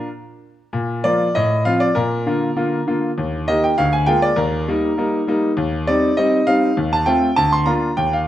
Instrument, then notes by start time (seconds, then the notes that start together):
grand piano
0.73 A#2
1.04 F3 A#3 F4 D5
1.35 A2 D#5
1.65 F3 C4 F4 F5
1.80 D5
1.95 A#2 A#4
2.26 D3 A#3 F4
2.56 D3 A#3 F4
2.87 D3 A#3 F4
3.18 D#2
3.48 D#3 A#3 G4 D#5
3.64 G5
3.78 D2 F5
3.93 G#5
4.06 G#3 A#3 F4 G5
4.22 D5
4.36 D#2 A#4
4.68 G3 A#3 D#4
4.97 G3 A#3 D#4
5.27 G3 A#3 D#4
5.57 D#2
5.87 G3 C4 D#4 D5
6.17 G3 C4 D#4 D#5
6.47 G3 C4 D#4 F5
6.77 D#2
6.93 A5
7.06 A3 C4 F4 G5
7.36 D2 A5
7.53 C6
7.66 A#3 D4 F4 A#5
7.97 D#2 G5
8.13 F5